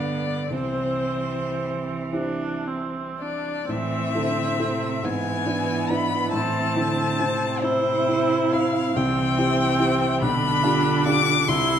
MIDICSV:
0, 0, Header, 1, 5, 480
1, 0, Start_track
1, 0, Key_signature, 0, "major"
1, 0, Tempo, 1107011
1, 222, Time_signature, 6, 3, 24, 8
1, 700, Tempo, 1039861
1, 1660, Key_signature, 0, "minor"
1, 1660, Tempo, 903614
1, 2140, Tempo, 864553
1, 3580, Tempo, 887574
1, 4540, Tempo, 841515
1, 6152, End_track
2, 0, Start_track
2, 0, Title_t, "Violin"
2, 0, Program_c, 0, 40
2, 0, Note_on_c, 0, 74, 51
2, 226, Note_on_c, 0, 72, 51
2, 232, Note_off_c, 0, 74, 0
2, 944, Note_off_c, 0, 72, 0
2, 1434, Note_on_c, 0, 74, 49
2, 1663, Note_on_c, 0, 76, 60
2, 1671, Note_off_c, 0, 74, 0
2, 2385, Note_on_c, 0, 80, 68
2, 2394, Note_off_c, 0, 76, 0
2, 2859, Note_on_c, 0, 83, 74
2, 2867, Note_off_c, 0, 80, 0
2, 3093, Note_off_c, 0, 83, 0
2, 3096, Note_on_c, 0, 81, 78
2, 3814, Note_on_c, 0, 72, 69
2, 3822, Note_off_c, 0, 81, 0
2, 4304, Note_on_c, 0, 77, 67
2, 4312, Note_off_c, 0, 72, 0
2, 4538, Note_on_c, 0, 79, 68
2, 4547, Note_off_c, 0, 77, 0
2, 5248, Note_off_c, 0, 79, 0
2, 5252, Note_on_c, 0, 83, 85
2, 5724, Note_off_c, 0, 83, 0
2, 5738, Note_on_c, 0, 86, 95
2, 5975, Note_on_c, 0, 84, 95
2, 5983, Note_off_c, 0, 86, 0
2, 6152, Note_off_c, 0, 84, 0
2, 6152, End_track
3, 0, Start_track
3, 0, Title_t, "Grand piano"
3, 0, Program_c, 1, 0
3, 0, Control_c, 1, 64, 127
3, 0, Note_on_c, 1, 43, 42
3, 0, Note_on_c, 1, 62, 29
3, 0, Note_on_c, 1, 67, 30
3, 0, Note_on_c, 1, 71, 28
3, 202, Note_off_c, 1, 62, 0
3, 203, Note_off_c, 1, 43, 0
3, 204, Note_off_c, 1, 67, 0
3, 205, Note_off_c, 1, 71, 0
3, 218, Note_on_c, 1, 36, 32
3, 232, Control_c, 1, 64, 0
3, 318, Control_c, 1, 64, 127
3, 921, Note_off_c, 1, 36, 0
3, 937, Note_on_c, 1, 64, 29
3, 939, Note_on_c, 1, 67, 28
3, 940, Note_on_c, 1, 72, 31
3, 1639, Note_off_c, 1, 64, 0
3, 1641, Note_off_c, 1, 67, 0
3, 1641, Note_off_c, 1, 72, 0
3, 1656, Note_on_c, 1, 45, 49
3, 1671, Control_c, 1, 64, 0
3, 1758, Control_c, 1, 64, 127
3, 1891, Note_off_c, 1, 45, 0
3, 1902, Note_on_c, 1, 64, 37
3, 1904, Note_on_c, 1, 69, 36
3, 1906, Note_on_c, 1, 72, 37
3, 2120, Note_off_c, 1, 64, 0
3, 2121, Note_off_c, 1, 69, 0
3, 2122, Note_off_c, 1, 72, 0
3, 2138, Note_on_c, 1, 64, 38
3, 2140, Note_on_c, 1, 69, 39
3, 2141, Note_on_c, 1, 72, 42
3, 2361, Note_off_c, 1, 64, 0
3, 2362, Note_off_c, 1, 69, 0
3, 2362, Note_off_c, 1, 72, 0
3, 2378, Note_on_c, 1, 44, 52
3, 2394, Control_c, 1, 64, 0
3, 2467, Control_c, 1, 64, 127
3, 2613, Note_off_c, 1, 44, 0
3, 2619, Note_on_c, 1, 62, 38
3, 2621, Note_on_c, 1, 64, 34
3, 2623, Note_on_c, 1, 71, 38
3, 2839, Note_off_c, 1, 62, 0
3, 2840, Note_off_c, 1, 64, 0
3, 2841, Note_off_c, 1, 71, 0
3, 2861, Note_on_c, 1, 62, 36
3, 2864, Note_on_c, 1, 64, 36
3, 2864, Note_on_c, 1, 71, 41
3, 3078, Note_off_c, 1, 62, 0
3, 3079, Note_off_c, 1, 64, 0
3, 3079, Note_off_c, 1, 71, 0
3, 3097, Note_on_c, 1, 45, 48
3, 3110, Control_c, 1, 64, 0
3, 3208, Control_c, 1, 64, 127
3, 3330, Note_off_c, 1, 45, 0
3, 3340, Note_on_c, 1, 60, 38
3, 3342, Note_on_c, 1, 64, 39
3, 3345, Note_on_c, 1, 72, 38
3, 3558, Note_off_c, 1, 60, 0
3, 3560, Note_off_c, 1, 64, 0
3, 3561, Note_off_c, 1, 72, 0
3, 3578, Note_on_c, 1, 60, 43
3, 3580, Note_on_c, 1, 64, 39
3, 3582, Note_on_c, 1, 72, 47
3, 3797, Note_off_c, 1, 60, 0
3, 3798, Note_off_c, 1, 64, 0
3, 3799, Note_off_c, 1, 72, 0
3, 3814, Note_on_c, 1, 60, 42
3, 3817, Note_on_c, 1, 64, 41
3, 3818, Note_on_c, 1, 72, 44
3, 4040, Note_off_c, 1, 60, 0
3, 4041, Note_off_c, 1, 64, 0
3, 4042, Note_off_c, 1, 72, 0
3, 4059, Note_on_c, 1, 60, 41
3, 4062, Note_on_c, 1, 64, 40
3, 4063, Note_on_c, 1, 72, 42
3, 4283, Note_off_c, 1, 60, 0
3, 4284, Note_off_c, 1, 64, 0
3, 4285, Note_off_c, 1, 72, 0
3, 4299, Note_on_c, 1, 60, 43
3, 4303, Note_on_c, 1, 64, 39
3, 4306, Note_on_c, 1, 72, 48
3, 4515, Note_off_c, 1, 60, 0
3, 4517, Note_off_c, 1, 64, 0
3, 4519, Note_off_c, 1, 72, 0
3, 4537, Note_on_c, 1, 36, 58
3, 4550, Control_c, 1, 64, 0
3, 4624, Control_c, 1, 64, 127
3, 4770, Note_off_c, 1, 36, 0
3, 4773, Note_on_c, 1, 60, 44
3, 4776, Note_on_c, 1, 64, 42
3, 4779, Note_on_c, 1, 67, 46
3, 4990, Note_off_c, 1, 60, 0
3, 4992, Note_off_c, 1, 64, 0
3, 4993, Note_off_c, 1, 67, 0
3, 5008, Note_on_c, 1, 60, 48
3, 5012, Note_on_c, 1, 64, 49
3, 5013, Note_on_c, 1, 67, 51
3, 5228, Note_off_c, 1, 60, 0
3, 5230, Note_off_c, 1, 64, 0
3, 5231, Note_off_c, 1, 67, 0
3, 5252, Note_on_c, 1, 35, 62
3, 5264, Control_c, 1, 64, 0
3, 5363, Control_c, 1, 64, 127
3, 5486, Note_off_c, 1, 35, 0
3, 5489, Note_on_c, 1, 62, 43
3, 5491, Note_on_c, 1, 65, 49
3, 5495, Note_on_c, 1, 67, 47
3, 5709, Note_off_c, 1, 62, 0
3, 5710, Note_off_c, 1, 65, 0
3, 5712, Note_off_c, 1, 67, 0
3, 5733, Note_on_c, 1, 62, 48
3, 5735, Note_on_c, 1, 65, 48
3, 5737, Note_on_c, 1, 67, 52
3, 5955, Note_off_c, 1, 62, 0
3, 5955, Note_off_c, 1, 65, 0
3, 5957, Note_off_c, 1, 67, 0
3, 5975, Note_on_c, 1, 36, 61
3, 5989, Control_c, 1, 64, 0
3, 6090, Control_c, 1, 64, 127
3, 6152, Note_off_c, 1, 36, 0
3, 6152, End_track
4, 0, Start_track
4, 0, Title_t, "Viola"
4, 0, Program_c, 2, 41
4, 0, Note_on_c, 2, 59, 43
4, 218, Note_off_c, 2, 59, 0
4, 221, Note_on_c, 2, 60, 41
4, 879, Note_off_c, 2, 60, 0
4, 940, Note_on_c, 2, 62, 45
4, 1187, Note_on_c, 2, 60, 36
4, 1194, Note_off_c, 2, 62, 0
4, 1438, Note_on_c, 2, 62, 34
4, 1445, Note_off_c, 2, 60, 0
4, 1661, Note_off_c, 2, 62, 0
4, 1664, Note_on_c, 2, 60, 53
4, 2392, Note_on_c, 2, 59, 47
4, 2400, Note_off_c, 2, 60, 0
4, 3102, Note_off_c, 2, 59, 0
4, 3106, Note_on_c, 2, 60, 55
4, 3823, Note_on_c, 2, 64, 55
4, 3831, Note_off_c, 2, 60, 0
4, 4539, Note_off_c, 2, 64, 0
4, 4542, Note_on_c, 2, 60, 63
4, 5252, Note_on_c, 2, 62, 60
4, 5261, Note_off_c, 2, 60, 0
4, 5975, Note_off_c, 2, 62, 0
4, 5979, Note_on_c, 2, 64, 68
4, 6152, Note_off_c, 2, 64, 0
4, 6152, End_track
5, 0, Start_track
5, 0, Title_t, "Cello"
5, 0, Program_c, 3, 42
5, 0, Note_on_c, 3, 50, 45
5, 224, Note_on_c, 3, 52, 38
5, 231, Note_off_c, 3, 50, 0
5, 1566, Note_off_c, 3, 52, 0
5, 1666, Note_on_c, 3, 52, 50
5, 1910, Note_on_c, 3, 50, 45
5, 1918, Note_off_c, 3, 52, 0
5, 2136, Note_off_c, 3, 50, 0
5, 2139, Note_on_c, 3, 48, 55
5, 2388, Note_on_c, 3, 52, 49
5, 2396, Note_off_c, 3, 48, 0
5, 3103, Note_off_c, 3, 52, 0
5, 3107, Note_on_c, 3, 52, 53
5, 3342, Note_on_c, 3, 50, 48
5, 3351, Note_off_c, 3, 52, 0
5, 3586, Note_on_c, 3, 48, 64
5, 3594, Note_off_c, 3, 50, 0
5, 4539, Note_off_c, 3, 48, 0
5, 4543, Note_on_c, 3, 52, 56
5, 5260, Note_on_c, 3, 50, 63
5, 5268, Note_off_c, 3, 52, 0
5, 5984, Note_on_c, 3, 48, 71
5, 5992, Note_off_c, 3, 50, 0
5, 6152, Note_off_c, 3, 48, 0
5, 6152, End_track
0, 0, End_of_file